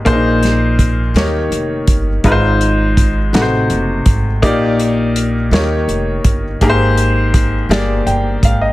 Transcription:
<<
  \new Staff \with { instrumentName = "Upright piano" } { \time 6/8 \key ees \major \tempo 4. = 55 <bes d' ees' aes' c''>4~ <bes d' ees' aes' c''>16 r16 <bes ees' g' des''>4~ <bes ees' g' des''>16 r16 | <aes ees' f' ces'' c''>4~ <aes ees' f' ces'' c''>16 r16 <a ees' fis' ces'' c''>4~ <a ees' fis' ces'' c''>16 r16 | <bes ees' g' d''>4~ <bes ees' g' d''>16 r16 <bes ees' f' g' des''>4~ <bes ees' f' g' des''>16 r16 | <bes g' aes' bes' c''>4~ <bes g' aes' bes' c''>16 r16 <bes g' aes' d''>4~ <bes g' aes' d''>16 r16 | }
  \new Staff \with { instrumentName = "Upright piano" } { \clef bass \time 6/8 \key ees \major bes,4. ees4. | aes,4. c4. | bes,4. ees4. | aes,4. r8 g''8 f''16 ees''16 | }
  \new Staff \with { instrumentName = "Upright bass" } { \clef bass \time 6/8 \key ees \major bes,,4. ees,8 f,,8 g,,8 | aes,,4. a,,8 fis,,8 aes,,8 | bes,,4. ees,8 f,,8 g,,8 | aes,,4. g,,8 g,,8 aes,,8 | }
  \new DrumStaff \with { instrumentName = "Drums" } \drummode { \time 6/8 <hh bd>8 <hh sn>8 <hh bd>8 <hh sn>8 hh8 <hh bd>8 | <hh bd>8 hh8 <hh bd>8 <hh sn>8 hh8 <hh bd>8 | <hh bd>8 hh8 hh8 <hh sn>8 hh8 <hh bd>8 | <hh bd>8 hh8 <hh bd>8 <hh sn>8 hh8 <hh bd>8 | }
>>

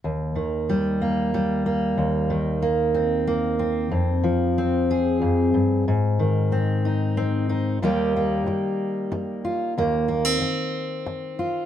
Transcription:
\new Staff \with { instrumentName = "Steel-string acoustic guitar" } { \time 3/4 \key ees \major \tempo 4 = 93 << { r4 g8 bes8 g8 bes8~ | bes4 bes8 c'8 bes8 c'8 | r4 c'8 aes'4. | r4 c'8 ees'8 c'8 ees'8 |
<ees g bes g'>8 bes2 f'8 | bes8 bes16 c'4.~ c'16 f'8 | } \\ { ees,8 ees2~ ees8 | ees,8 ees2~ ees8 | f,8 f4. f,8 g,8 | aes,8 ees2~ ees8 |
ees,4 r2 | ees,4 r2 | } >> }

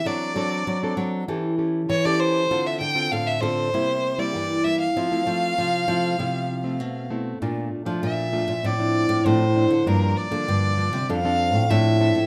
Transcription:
<<
  \new Staff \with { instrumentName = "Violin" } { \time 4/4 \key d \minor \tempo 4 = 98 d''4. r4. cis''16 d''16 c''8~ | c''16 e''16 g''8 f''16 e''16 c''4~ c''16 d''8. e''16 f''16~ | f''2.~ f''8 r8 | r4 e''4 d''4 c''4 |
bes'8 d''4. f''4 e''4 | }
  \new Staff \with { instrumentName = "Nylon-string guitar" } { \time 4/4 \key d \minor << { <c' d' a'>8 <c' d' a'>8. <c' d' a'>8. <cis' g' a'>8 <cis' g' a'>8 r16 <cis' g' a'>8. | <c' f' a'>8 r16 <c' f' a'>8. <c' f' a'>8 <g bes e'>8. <g bes e'>8. <g bes e'>8 | <a c' e'>16 <a c' e'>16 <a c'>8. r16 <a c' e'>8 <a c' e'>8 r16 <a c'>8. <a c' e'>8 | <a d' f'>8. <a d' f'>8. <a d' f'>16 r16 <f c' d'>16 <f c' d'>8. <f c' d'>16 r16 <f c' d'>16 r16 |
<f bes d'>8. <f bes d'>8. <f bes d'>16 r16 <c' d' a'>16 <c' d' a'>8. <c' d' a'>8 <c' d' a'>16 r16 | } \\ { fis4 fis4 e4 e4 | d4 a,4 c4 g,4 | f4 c4 f4 r4 | bes,4 f4 a,4 a,4 |
g,4 d4 f4 f4 | } >> }
  \new Staff \with { instrumentName = "Nylon-string guitar" } { \clef bass \time 4/4 \key d \minor fis8 fis8 fis8 fis8 e4 e4 | d8 d8 d8 d8 c4 e4 | f8 f8 f8 f8 c4 b,4 | bes,8 r16 f16 bes,8. bes,16 a,8. a,16 a,8. d16 |
g,8 r16 d16 g,8. c16 f,8. a,16 a,8. a,16 | }
>>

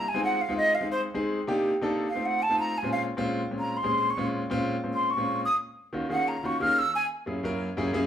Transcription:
<<
  \new Staff \with { instrumentName = "Flute" } { \time 4/4 \key bes \minor \tempo 4 = 179 aes''8 ges''8 f''8 ees''8 f''8 c''8 r4 | r2 f''8 ges''8 a''8 bes''8 | aes''8 f''8 r4. bes''8 c'''4 | des'''8 r2 c'''8 des'''4 |
\key ees \minor ees'''8 r4. ges''8 bes''8 des'''8 f'''8 | fes'''8 aes''8 r2. | }
  \new Staff \with { instrumentName = "Grand piano" } { \time 4/4 \key bes \minor r16 <aes c' ees' f'>8. r16 <aes c' ees' f'>8. r16 <aes c' ees' aes'>8. r16 <aes c' ees' aes'>8. | r16 <c bes d' ees' g'>8. r16 <c bes d' ees' a'>8. r16 <a c' ees' f'>8. r16 <a c' ees' f'>8. | r16 <bes, aes c' des' f'>8. r16 <bes, aes c' des' f'>8. r16 <bes, aes c' des' f'>8. r16 <bes, aes c' des' aes'>8. | r16 <bes, aes c' des' f'>8. r16 <bes, aes c' des' f'>8. r16 <bes, aes c' des' f'>8. r16 <bes, aes c' des' f'>8. |
\key ees \minor r4. <ees bes des' f' ges'>16 r16 <ees bes des' f' aes'>8. r16 <ees bes des' f' ges'>16 r16 <ees bes des' f' aes'>8 | r4. <ges, bes des' fes' aes'>16 r16 <ges, bes des' fes' bes'>8. r16 <ges, bes des' fes' aes'>16 r16 <ges, bes des' fes' aes'>8 | }
>>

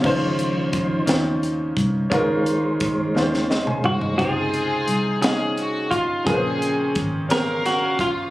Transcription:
<<
  \new Staff \with { instrumentName = "Clean electric guitar" } { \time 6/8 \key des \major \tempo 4. = 58 r2. | r2 r8 ges'8 | aes'4. aes'4 f'8 | aes'4 r8 bes'8 ges'8 f'8 | }
  \new Staff \with { instrumentName = "String section" } { \time 6/8 \key des \major << { r2. | r2 r8 ges'8 | aes'4. aes'8 ges'8 f'8 | aes'4 r8 bes'4 f'8 | } \\ { r2. | r2. | <c' f'>4. r4. | <c' des'>4. <des' f''>4. | } >> }
  \new Staff \with { instrumentName = "Grand piano" } { \time 6/8 \key des \major << { r2. | r2 ees''16 aes''16 f''16 ees''16~ | ees''16 r2 r8. | r2. | } \\ { <des' ees' f' c''>4 r8 <des' ees' f' c''>4 r8 | <des' ees' f' bes'>4 r8 <des' ees' f' c''>4 r8 | <c' ees' f' c''>4 r8 <des' ees' ees'' f''>4 r8 | <des aes' bes' ces'' c''>4 r8 <des' aes' bes' c''>4 r8 | } >> }
  \new Staff \with { instrumentName = "Grand piano" } { \clef bass \time 6/8 \key des \major des4. r4. | des4. r4. | c4. r4. | bes,4. r4. | }
  \new Staff \with { instrumentName = "Tonewheel organ" } { \clef bass \time 6/8 \key des \major <ees f c''>4. r4. | <ees aes c''>2. | r2. | r2. | }
  \new Staff \with { instrumentName = "Fingered electric bass" } { \clef bass \time 6/8 \key des \major des,4. ees,4 c,8 | des,4. ees,4 c,8 | des,4 c,2 | bes,,4 aes,,2 | }
  \new DrumStaff \with { instrumentName = "Drums" } \drummode { \time 6/8 <cymc bd>8 hh8 <hh bd>8 <hh sn>8 hh8 <hh bd>8 | <hh bd>8 hh8 <hh bd>8 sn16 sn16 sn16 toml16 tomfh16 tomfh16 | <hh bd>8 hh8 hh8 <hh sn>8 hh8 <hh bd>8 | <hh bd>8 hh8 <hh bd>8 <hh sn>8 <hh sn>8 <hh bd>8 | }
>>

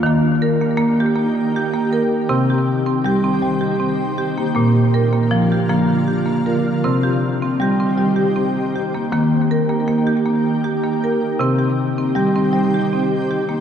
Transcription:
<<
  \new Staff \with { instrumentName = "Ambient pad" } { \time 6/8 \key ees \major \tempo 4. = 53 << { <bes g'>2. | <c' g'>2. | <bes f'>2. | <c' g'>2. |
<bes g'>2. | <c' g'>2. | } \\ { ees2. | ees2. | d2. | ees2. |
ees2.~ | ees2. | } >> }
  \new Staff \with { instrumentName = "Marimba" } { \time 6/8 \key ees \major bes8 bes'16 bes8 g'16 r8 g'16 bes16 bes'8 | c'16 g'8 c'16 g'16 c'8 g'16 c'8 g'16 bes16 | bes8 bes'16 bes8 g'16 bes8 g'16 bes16 bes'8 | c'16 g'8 c'16 g'16 c'8 g'16 c'8 g'16 bes16 |
bes8 bes'16 bes8 g'16 bes8 g'16 bes16 bes'8 | c'16 g'8 c'16 g'16 c'8 g'16 c'8 g'16 bes16 | }
  \new Staff \with { instrumentName = "Marimba" } { \clef bass \time 6/8 \key ees \major ees4 bes8 bes4. | c4 g8 g4. | bes,4 f8 f4. | c4 g8 g4. |
ees4 bes8 r4. | c4 g8 g4. | }
>>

